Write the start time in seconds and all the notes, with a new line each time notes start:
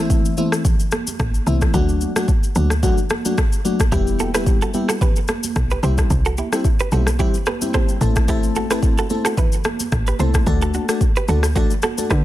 Already playing: A1 E3 A3
0.00 C4 E4
0.10 kick, shaker
0.25 shaker
0.37 E3 A3 C4 E4, high conga, shaker
0.52 cross-stick, shaker
0.65 kick, low conga, shaker
0.80 shaker
0.92 cross-stick, high conga, shaker
1.07 high conga, shaker
1.20 A1, kick, cross-stick, high conga, shaker
1.34 shaker
1.46 C2 E3 A3 C4 E4, high conga, shaker
1.62 kick, cross-stick, shaker
1.74 D2 F#3 A3 D4 F#4, kick, low conga, shaker
1.89 shaker
2.01 high conga, shaker
2.16 F#3 A3 D4 F#4, cross-stick, high conga, shaker
2.28 kick, shaker
2.43 shaker
2.55 D2 F#3 A3 D4 F#4, high conga, shaker
2.70 cross-stick, shaker
2.83 F#3 A3 D4 F#4, kick, low conga, shaker
2.98 shaker
3.10 cross-stick, high conga, shaker
3.25 F#3 A3 D4 F#4, high conga, shaker
3.38 kick, cross-stick, high conga, shaker
3.52 shaker
3.65 F#3 A3 D4 F#4, high conga, shaker
3.80 kick, cross-stick, shaker
3.92 E1 G3 B3 E4 G4, kick, low conga, shaker
4.07 shaker
4.19 F#4 A4, high conga, shaker
4.34 G3 B3 E4 G4 B4, cross-stick, shaker
4.46 kick, shaker
4.62 F#4 A4, shaker
4.74 G3 B3 E4 G4, high conga, shaker
4.89 F#4 A4, cross-stick, shaker
5.01 G4 B4, kick, low conga, shaker
5.16 shaker
5.28 cross-stick, high conga, shaker
5.43 high conga, shaker
5.56 B1, kick, cross-stick, shaker
5.70 G4 B4, shaker
5.83 C2 G3 C4 E4 G4 C5, high conga, shaker
5.98 kick, cross-stick, shaker
6.10 C2, kick, low conga, shaker
6.25 F#4 A4, shaker
6.37 E4 G4, high conga, shaker
6.52 G3 C4 E4 G4, cross-stick, shaker
6.65 kick, shaker
6.80 G4 B4, shaker
6.92 B1 G3 C4 E4 F#4 G4 A4, high conga, shaker
7.07 cross-stick, shaker
7.19 G3 C4 E4 G4, kick, low conga, shaker
7.34 shaker
7.46 G4 B4, cross-stick, high conga, shaker
7.61 G3 C4 E4 G4, high conga, shaker
7.74 G4 C5, kick, cross-stick, high conga, shaker
7.89 shaker
8.01 A1 A3 C4 E4 A4, high conga, shaker
8.16 kick, cross-stick, shaker
8.28 A3 C4 E4 G4 A4, kick, low conga, shaker
8.43 shaker
8.55 F#4 A4, high conga, shaker
8.70 A3 C4 E4 G4 A4 B4, cross-stick, shaker
8.83 kick, shaker
8.98 F#4 A4, shaker
9.10 A3 C4 E4 A4, high conga, shaker
9.25 F#4 A4, cross-stick, shaker
9.37 E4 B4, kick, low conga, shaker
9.52 shaker
9.64 cross-stick, high conga, shaker
9.80 high conga, shaker
9.92 A1, kick, cross-stick, high conga, shaker
10.07 G4 B4, shaker
10.19 C2 A3 C4 E4 A4 C5, high conga, shaker
10.34 kick, cross-stick, shaker
10.46 D2 A3 D4 F#4 A4, kick, low conga, shaker
10.62 F#4 A4, shaker
10.74 D4 F#4, high conga, shaker
10.89 A3 D4 F#4 A4, cross-stick, shaker
11.01 kick, shaker
11.16 G4 B4, shaker
11.28 D2 A3 D4 F#4 A4, high conga, shaker
11.43 cross-stick, shaker
11.55 A3 D4 F#4 A4, kick, low conga, shaker
11.70 shaker
11.82 F#4 A4, cross-stick, high conga, shaker
11.98 A3 D4 F#4 A4, high conga, shaker
12.10 D3 F#4 B4, kick, cross-stick, high conga, shaker